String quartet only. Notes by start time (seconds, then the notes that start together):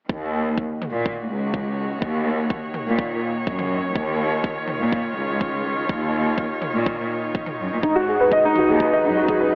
0.09 D#3
0.54 D#4
0.66 F#4
1.60 C#5
3.82 F4
7.83 G#3
8.27 F#4
8.49 B4